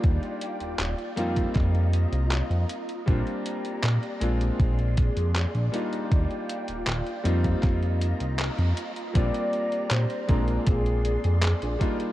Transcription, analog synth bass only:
\new Staff \with { instrumentName = "Analog synth bass" } { \clef bass \time 4/4 \key bes \major \tempo 4 = 79 ees,16 r8 ees,,16 ees,,16 r16 f,8 f,8. c,8 f,16 r8 | bes,,16 r8. bes,16 r16 bes,,8 bes,,8. f,8 bes,,16 r8 | ees,16 r8 ees,,16 ees,,16 r16 f,8 f,8. c,8 f,16 r8 | bes,,16 r8. bes,16 r16 bes,,8 bes,,8. f,8 bes,,16 r8 | }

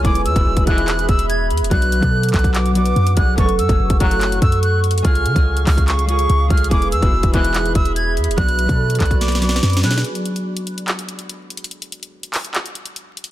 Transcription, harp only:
\new Staff \with { instrumentName = "Harp" } { \time 4/4 \key b \dorian \tempo 4 = 144 <gis b e' gis'>8 r16 <gis b e' fis'>8 r16 <gis b e' gis'>4. r4 | <fis b d' fis'>8 r16 <fis b d' a'>8 r16 <fis b d' fis'>8. r16 <fis b d' fis'>8. r16 <fis b d' gis'>8 | <a cis' fis' a'>8 r16 <a cis' fis' gis'>8 r16 <a cis' fis' a'>4. r4 | <gis cis' eis' gis'>8 r16 <gis cis' eis' gis'>8 r16 <gis cis' eis' gis'>8. r16 <gis cis' eis' gis'>8. r16 <gis cis' eis' gis'>8 |
<gis b e' gis'>8 r16 <gis b e' fis'>8 r16 <gis b e' gis'>4. r4 | <fis b d' fis'>8 r16 <fis b d' a'>8 r16 <fis b d' fis'>8. r16 <fis b d' fis'>8. r16 <fis b d' gis'>8 | r1 | r1 | }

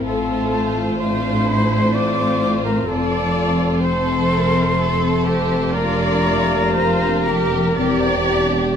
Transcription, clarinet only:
\new Staff \with { instrumentName = "Clarinet" } { \time 3/4 \key f \major \tempo 4 = 63 a'4 c''4 d''8. bes'16 | a'4 c''4. a'8 | bes'2~ bes'8. r16 | }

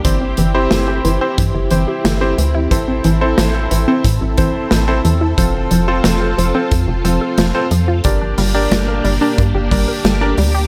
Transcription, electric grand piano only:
\new Staff \with { instrumentName = "Electric grand piano" } { \time 4/4 \key g \dorian \tempo 4 = 90 <c' e' g' c''>8. <c' e' g' c''>4 <c' e' g' c''>16 r8 <c' e' g' c''>8. <c' e' g' c''>16 r8 | <c' e' a' c''>8. <c' e' a' c''>4 <c' e' a' c''>16 r8 <c' e' a' c''>8. <c' e' a' c''>16 r8 | <c' f' a' c''>8. <c' f' a' c''>4 <c' f' a' c''>16 r8 <c' f' a' c''>8. <c' f' a' c''>16 r8 | <d' g' bes' d''>8. <d' g' bes' d''>4 <d' g' bes' d''>16 r8 <d' g' bes' d''>8. <d' g' bes' d''>16 r8 | }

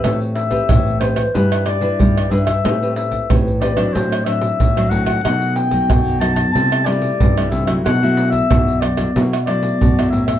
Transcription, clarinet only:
\new Staff \with { instrumentName = "Clarinet" } { \time 4/4 \key a \dorian \tempo 4 = 92 e''8 e''4 c''8 b'8 d''4 e''16 e''16~ | e''8 e''8 r8 d''8 c''8 e''4 fis''16 fis''16 | fis''8 g''4 a''16 a''16 a''8 d''4 e''16 e''16 | fis''8. e''8. d''8 r8 d''4 e''16 e''16 | }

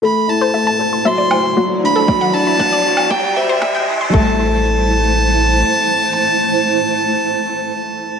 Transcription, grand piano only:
\new Staff \with { instrumentName = "Grand piano" } { \time 4/4 \key a \dorian \tempo 4 = 117 a8 e'8 a8 a'8 fis8 fis'8 fis8 d'8 | fis8 d'8 fis8 fis'8 g8 c''8 g8 e'8 | a8 r2. r8 | r1 | }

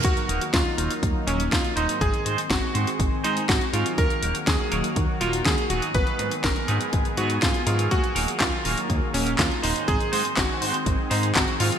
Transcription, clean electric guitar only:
\new Staff \with { instrumentName = "Clean electric guitar" } { \time 4/4 \key ees \minor \tempo 4 = 122 <ges bes ees' bes'>8 <ges bes ees' bes'>8 r8 <ges bes ees' bes'>8 r8 <ges bes ees' bes'>8 r8 <aes, aes c' ees' c''>8~ | <aes, aes c' ees' c''>8 <aes, aes c' ees' c''>8 r8 <aes, aes c' ees' c''>8 r8 <aes, aes c' ees' c''>8 r8 <ges bes ees' bes'>8~ | <ges bes ees' bes'>8 <ges bes ees' bes'>8 r8 <ges bes ees' bes'>8 r8 <ges bes ees' bes'>8 r8 <aes, ges ces' ees' aes'>8~ | <aes, ges ces' ees' aes'>8 <aes, ges ces' ees' aes'>8 r8 <aes, ges ces' ees' aes'>8 r8 <aes, ges ces' ees' aes'>8 r8 <ges bes ees' bes'>8~ |
<ges bes ees' bes'>8 <ges bes ees' bes'>8 r8 <ges bes ees' bes'>8 r8 <ges bes ees' bes'>8 r8 <aes, aes c' ees' c''>8~ | <aes, aes c' ees' c''>8 <aes, aes c' ees' c''>8 r8 <aes, aes c' ees' c''>8 r8 <aes, aes c' ees' c''>8 r8 <ges bes ees' bes'>8 | }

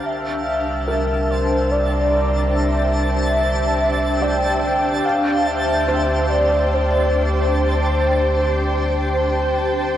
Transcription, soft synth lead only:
\new Staff \with { instrumentName = "Soft synth lead" } { \time 3/4 \key c \major \tempo 4 = 72 e''4. c''8 d''4 | e''2 g''4 | f''8 e''4 d''8 c''4 | c''2 r4 | }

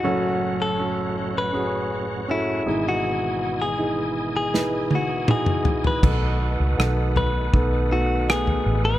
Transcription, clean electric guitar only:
\new Staff \with { instrumentName = "Clean electric guitar" } { \time 4/4 \key b \mixolydian \tempo 4 = 80 fis'8. a'4 b'4~ b'16 e'8. fis'16~ | fis'8. gis'4 gis'8. fis'8 gis'8. b'16~ | b'4. b'4 fis'8 gis'8. b'16 | }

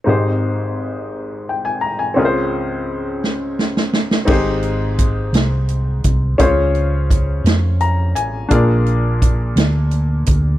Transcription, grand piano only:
<<
  \new Staff \with { instrumentName = "Grand piano" } { \time 6/8 \key aes \major \tempo 4. = 57 << { r2 g''16 aes''16 bes''16 aes''16~ | aes''16 r2 r8. | r2. | r2 bes''8 aes''8 |
r2. | } \\ { <c' ees' g' aes' c''>2. | <c' des' f' aes' bes' c''>2. | <c' ees' g' aes' c''>2. | <des' f' aes' c'' des''>2. |
<d' f' aes' bes' d''>2. | } >> }
  \new Staff \with { instrumentName = "Grand piano" } { \clef bass \time 6/8 \key aes \major <aes,, aes,>2. | <des, des>2. | aes,4. r4. | des4. r4. |
bes,4. r4. | }
>>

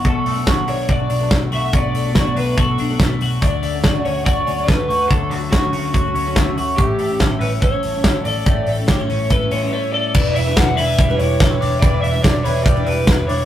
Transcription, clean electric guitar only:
\new Staff \with { instrumentName = "Clean electric guitar" } { \time 4/4 \key e \dorian \tempo 4 = 143 b,8 a8 fis'8 d'8 fis'8 d'8 a8 fis'8 | b,8 a8 fis'8 d'8 fis'8 d'8 a8 fis'8 | d8 a8 fis'8 cis'8 fis'8 cis'8 a8 fis'8 | d8 a8 fis'8 cis'8 fis'8 cis'8 a8 fis'8 |
a,8 a8 a'8 cis'8 a'4 a8 a'8 | a,8 a8 g'16 a'16 cis'8 a'8 cis'8 a8 a'8 | e8 e'8 d'8 b'8 g8 e'8 a'16 b'16 d'8 | e8 e'8 d'8 b'8 g8 e'8 b'8 d'8 | }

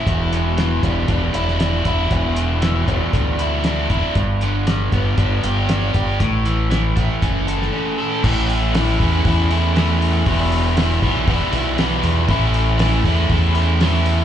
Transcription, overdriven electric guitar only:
\new Staff \with { instrumentName = "Overdriven electric guitar" } { \time 4/4 \key a \mixolydian \tempo 4 = 118 e,8 b,8 e8 g8 d'8 e'8 d'8 e'8 | e,8 b,8 e8 g8 d'8 e'8 d'8 e'8 | g,8 d8 g8 b8 d'8 g'8 d'8 g'8 | a,8 e8 e8 a8 cis'8 a'8 cis'8 a'8 |
<a, e a cis' e'>4 <e a cis' e'>8 <a cis' e'>8 <e a cis' e'>8 <a cis' e'>8 <a, e a cis' e'>4 | <e, b, e g b e'>4 <e g b e'>8 <e g b e'>8 <e g b e'>8 <e g b e'>8 <e, b, e g b e'>4 | <a, e a cis' e'>4 <e a cis' e'>8 <a cis' e'>8 <e a cis' e'>8 <a cis' e'>8 <a, e a cis' e'>4 | }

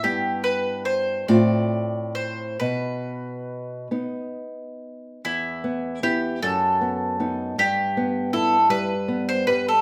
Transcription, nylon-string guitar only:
\new Staff \with { instrumentName = "Nylon-string guitar" } { \time 6/8 \key e \minor \tempo 4. = 50 <g, b e'>4. <a, c' f'>4. | b,4. <b dis'>4. | e,8 b8 <b e'>8 fis,8 b8 <b dis'>8 | g,8 b8 e'8 g8 b8 g8 | }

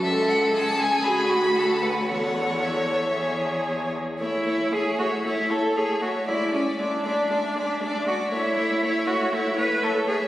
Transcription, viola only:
\new Staff \with { instrumentName = "Viola" } { \time 4/4 \key a \major \tempo 4 = 117 a'4 gis'4 fis'2 | a'4 a'4 gis'4. r8 | a8 a8 a8 a8 a8 a8 a8 a8 | gis8 gis8 gis8 gis8 gis8 gis8 gis8 gis8 |
a8 a8 a8 a8 a8 a8 a8 a8 | }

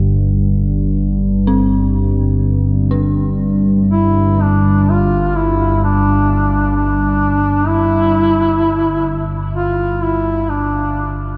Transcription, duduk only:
\new Staff \with { instrumentName = "Duduk" } { \time 4/4 \tempo 4 = 64 r1 | e'8 d'8 f'8 e'8 d'4 d'4 | e'4. r8 f'8 e'8 d'8. r16 | }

